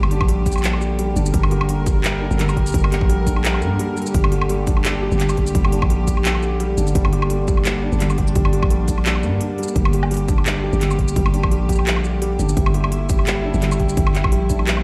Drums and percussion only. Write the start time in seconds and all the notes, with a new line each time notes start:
0.03 low woodblock
0.11 closed hi-hat
0.21 kick, low woodblock
0.28 closed hi-hat
0.46 kick, closed hi-hat, shaker
0.52 low woodblock, shaker
0.58 low woodblock, shaker
0.61 clap, closed hi-hat, low woodblock
0.73 low woodblock
0.81 shaker
0.99 closed hi-hat
1.16 closed hi-hat, shaker
1.26 shaker
1.34 kick, closed hi-hat
1.43 low woodblock
1.51 closed hi-hat
1.61 low woodblock
1.69 closed hi-hat
1.86 kick, closed hi-hat, shaker
2.04 clap, closed hi-hat
2.31 shaker
2.39 clap, closed hi-hat
2.49 low woodblock, shaker
2.57 kick, closed hi-hat
2.67 shaker
2.69 shaker
2.72 kick, closed hi-hat, shaker
2.74 shaker
2.78 shaker
2.80 low woodblock, shaker
2.92 clap, closed hi-hat
3.01 kick
3.10 closed hi-hat
3.27 kick, closed hi-hat, shaker
3.36 low woodblock
3.45 clap, closed hi-hat
3.54 low woodblock
3.62 shaker
3.79 closed hi-hat
3.97 shaker
4.02 closed hi-hat
4.06 shaker
4.14 kick, closed hi-hat
4.24 low woodblock
4.32 closed hi-hat
4.41 low woodblock
4.49 closed hi-hat
4.67 kick, closed hi-hat, shaker
4.77 low woodblock
4.85 clap, closed hi-hat
5.12 shaker
5.20 clap, closed hi-hat
5.29 low woodblock, shaker
5.37 kick, closed hi-hat
5.47 shaker
5.55 kick, closed hi-hat
5.65 low woodblock
5.72 closed hi-hat
5.82 kick, low woodblock
5.90 closed hi-hat
6.08 kick, closed hi-hat, shaker
6.17 low woodblock
6.25 clap, closed hi-hat
6.35 low woodblock
6.43 shaker
6.60 closed hi-hat
6.78 closed hi-hat, shaker
6.87 shaker
6.95 kick, closed hi-hat
7.05 low woodblock
7.13 closed hi-hat
7.22 low woodblock
7.30 closed hi-hat
7.48 kick, shaker
7.57 low woodblock
7.65 clap, closed hi-hat
7.92 shaker
8.00 clap, closed hi-hat
8.10 low woodblock, shaker
8.18 kick, closed hi-hat
8.27 shaker
8.35 kick, closed hi-hat
8.45 low woodblock
8.53 closed hi-hat
8.63 kick, low woodblock
8.70 closed hi-hat
8.88 kick, closed hi-hat, shaker
8.98 low woodblock
9.06 clap, closed hi-hat
9.15 low woodblock
9.23 shaker
9.41 closed hi-hat
9.58 closed hi-hat
9.63 shaker
9.68 shaker
9.76 kick, closed hi-hat
9.85 low woodblock
9.93 closed hi-hat
10.03 low woodblock
10.11 closed hi-hat
10.14 closed hi-hat
10.17 closed hi-hat
10.28 kick, closed hi-hat, shaker
10.38 low woodblock
10.46 clap, closed hi-hat
10.73 shaker
10.81 clap, closed hi-hat
10.91 low woodblock, shaker
10.99 kick, closed hi-hat
11.08 shaker
11.16 kick, closed hi-hat
11.26 low woodblock
11.34 closed hi-hat
11.43 kick, low woodblock
11.51 closed hi-hat
11.69 kick, closed hi-hat, shaker
11.72 shaker
11.75 low woodblock, shaker
11.87 clap, closed hi-hat
11.96 low woodblock
12.04 shaker
12.22 closed hi-hat
12.39 closed hi-hat, shaker
12.49 shaker
12.57 kick, closed hi-hat
12.66 low woodblock
12.74 closed hi-hat
12.84 low woodblock
12.92 closed hi-hat
13.09 kick, closed hi-hat, shaker
13.19 low woodblock
13.27 clap, closed hi-hat
13.54 shaker
13.62 clap, closed hi-hat
13.72 low woodblock, shaker
13.80 kick, closed hi-hat
13.89 shaker
13.97 kick, closed hi-hat
14.07 low woodblock
14.15 clap, closed hi-hat
14.24 kick, low woodblock
14.32 closed hi-hat
14.50 kick, closed hi-hat, shaker
14.59 low woodblock
14.67 clap, closed hi-hat
14.77 low woodblock